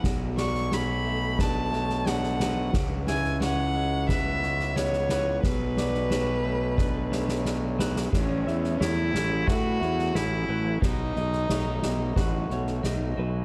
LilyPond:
<<
  \new Staff \with { instrumentName = "Violin" } { \time 4/4 \key b \dorian \tempo 4 = 89 r8 cis'''8 b''4 a''4 fis''4 | r8 gis''8 fis''4 e''4 cis''4 | b'2. r4 | cis'4 e'4 fis'4 e'4 |
dis'2 r2 | }
  \new Staff \with { instrumentName = "Clean electric guitar" } { \time 4/4 \key b \dorian r8 d''8 cis''4 b'8 cis''4 b'8 | r8 e''8 cis''4 b'8 cis''4 b'8 | r8 d''8 cis''4 b'8 cis''4 b'8 | r8 e''8 cis''4 b'8 cis''4 b'8 |
r8 dis''8 cis''4 b'8 cis''4 b'8 | }
  \new Staff \with { instrumentName = "Clean electric guitar" } { \time 4/4 \key b \dorian b,8 fis8 fis8 a8 d'8 a8 d'8 fis8 | cis8 e8 e8 gis8 b8 gis8 b8 e8 | b,8 fis8 fis8 a8 d'8 a8 d'8 fis8 | a,4 a8 cis'8 e'8 a8 cis'8 fis8 |
b,4 a8 dis'8 fis'8 a8 dis'8 fis8 | }
  \new Staff \with { instrumentName = "Fingered electric bass" } { \clef bass \time 4/4 \key b \dorian b,,1 | cis,1 | b,,1 | a,,8 e,8 e,8 a,,8 a,8 e,8 a,,8 a,,8 |
b,,8 b,,8 b,,8 b,,8 a,,8 b,,8 b,,8 b,,8 | }
  \new DrumStaff \with { instrumentName = "Drums" } \drummode { \time 4/4 <bd sn>8 sn16 sn16 sn4 <bd sn>8 sn16 sn16 sn16 sn16 sn8 | <bd sn>8 sn16 sn16 sn4 <bd sn>8 sn16 sn16 sn16 sn16 sn8 | <bd sn>8 sn16 sn16 sn4 <bd sn>8 sn16 sn16 sn8 sn16 sn16 | <cymc bd sn>8 sn16 sn16 sn8 sn8 <bd sn>8 sn16 sn16 sn4 |
<bd sn>8 sn16 sn16 sn8 sn8 <bd sn>8 sn16 sn16 sn4 | }
>>